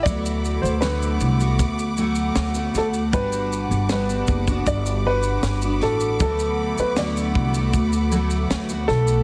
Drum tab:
SH |xxxxxxxxxxxxxxxx|xxxxxxxxxx-xxx-x|xx-xxx-xxxxxxx-x|
SD |----o-------o-o-|----o-------o-o-|----o-------o-o-|
BD |o-------o-------|o-----ooo-------|o-----o-o-------|